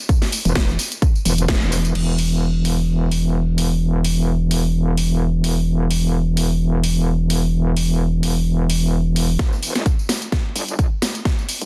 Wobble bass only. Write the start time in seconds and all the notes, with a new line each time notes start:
0.45 E1
0.56 E1
1.25 E1
1.62 E1
1.95 E1
9.39 E1
9.75 G1
10.56 G1
11.61 G1